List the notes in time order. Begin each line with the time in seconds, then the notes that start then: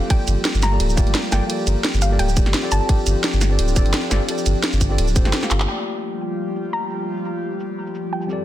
Already playing: G4
0.07 F3 G3 A#3 F4 G4 G5, kick, closed hi-hat, ride
0.12 A4 D5
0.28 G1, closed hi-hat, ride, shaker
0.45 snare, closed hi-hat, ride
0.54 G1, shaker
0.62 A#5, snare, closed hi-hat, ride, shaker
0.70 A#3 F4 G4 A4 D5
0.80 D1, closed hi-hat, ride
0.89 shaker
0.96 A3 A#3 F4 G4 D5, kick, closed hi-hat, ride, shaker
1.07 G1, closed hi-hat
1.15 snare, closed hi-hat, ride
1.31 G1 A#3 F4 G4 A4 D5 G5, snare, closed hi-hat, ride, shaker
1.47 A#3 F4 G4, closed hi-hat, ride
1.51 A4 D5
1.67 G1, closed hi-hat, ride, shaker
1.84 snare, closed hi-hat, ride
1.94 G1, shaker
2.02 F5, closed hi-hat, ride, shaker
2.10 A#3 F4 G4 A4 D5
2.19 D1 G5, closed hi-hat, ride
2.29 shaker
2.35 A#3 F4 G4 A4 D5, kick, closed hi-hat, ride, shaker
2.46 G1, snare, closed hi-hat
2.54 snare, closed hi-hat, ride
2.62 C4 F4 G4 A4 D5
2.72 G1 F3 D4 A5, closed hi-hat, ride, shaker
2.86 C4 F4 G4, kick, closed hi-hat, ride
2.90 A4 D5
3.06 G1, closed hi-hat, ride, shaker
3.24 snare, closed hi-hat, ride
3.33 G1, shaker
3.41 snare, closed hi-hat, ride, shaker
3.49 C4 F4 G4 A4 D5
3.59 D1, closed hi-hat, ride
3.68 shaker
3.75 C4 F4 G4 A4 D5, kick, closed hi-hat, ride, shaker
3.86 G1, closed hi-hat
3.94 snare, closed hi-hat, ride
4.10 G1 C4 F4 G4 A4 D5, snare, closed hi-hat, ride, shaker
4.26 C4 F4 G4, closed hi-hat, ride
4.30 A4 D5
4.38 shaker
4.46 G1, closed hi-hat, ride, shaker
4.64 snare, closed hi-hat, ride
4.73 G1, closed hi-hat, shaker
4.81 kick, closed hi-hat, ride, shaker
4.89 C4 F4 G4 A4 D5
4.98 D1, closed hi-hat, ride
5.08 shaker
5.14 C4 F4 G4 A4 C5, kick, closed hi-hat, ride, shaker
5.24 G1 C4 F4 G4 A4 C5, snare, closed hi-hat
5.33 snare, closed hi-hat, ride
5.41 C4 F4 G4 A4 F5, snare, shaker
5.51 G1, clap, closed hi-hat, ride, shaker
5.60 clap
5.65 F3 G3 A#3 F4 G4 G5
5.70 A3 D5
5.86 shaker
6.21 shaker
6.47 shaker
6.55 shaker
6.73 A#5
6.82 shaker
6.90 shaker
7.17 shaker
7.25 shaker
7.60 shaker
7.87 shaker
7.95 shaker
8.13 G5
8.22 shaker
8.27 G2 G3 C4 D4 F4 G4 A4, shaker
8.31 A4 D5